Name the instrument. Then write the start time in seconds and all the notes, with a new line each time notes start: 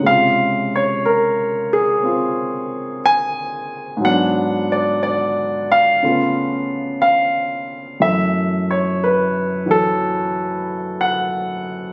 grand piano
0.00 C#3 G#3
0.06 C3 F5
0.11 F4
0.76 C#5
1.05 A#4
1.73 G#4
2.02 C4 F4
3.06 G#5
3.97 G#2 F#3
4.04 B3 D4 F#5
4.72 D5
5.03 D5
5.72 F5
6.03 C#3 A3 B3 C#4 F4
7.02 F5
8.00 F#2 E3 A3 E5
8.71 C#5
9.04 B4
9.66 E3 F#3
9.71 A4
11.01 F#5